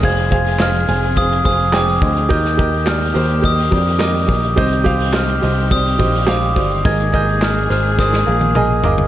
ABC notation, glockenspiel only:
X:1
M:4/4
L:1/16
Q:1/4=106
K:Cm
V:1 name="Glockenspiel"
a'4 f'4 e'2 e'2 d'3 z | g'4 f'4 e'4 d'3 z | g'4 f'4 e'4 d'3 z | a'2 g'2 f'2 f'2 e'6 z2 |]